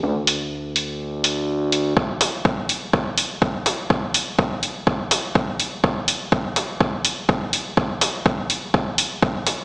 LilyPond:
<<
  \new Staff \with { instrumentName = "Analog synth bass" } { \clef bass \time 4/4 \key d \phrygian \tempo 4 = 124 d,1 | r1 | r1 | r1 |
r1 | }
  \new DrumStaff \with { instrumentName = "Drums" } \drummode { \time 4/4 r8 hho8 r8 hho8 r8 hho8 r8 hho8 | bd8 <hho toml>8 bd8 hho8 <bd toml>8 hho8 bd8 <hho toml>8 | bd8 hho8 <bd toml>8 hho8 bd8 <hho toml>8 bd8 hho8 | <bd toml>8 hho8 bd8 <hho toml>8 bd8 hho8 <bd toml>8 hho8 |
bd8 <hho toml>8 bd8 hho8 <bd toml>8 hho8 bd8 <hho toml>8 | }
>>